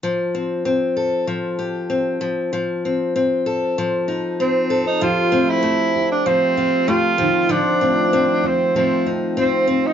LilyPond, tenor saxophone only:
\new Staff \with { instrumentName = "Tenor saxophone" } { \time 4/4 \key f \major \tempo 4 = 96 r1 | r2. c'8. ees'16 | f'8. e'4 d'16 c'4 f'4 | d'4. c'8 c'8 r8 c'8. ees'16 | }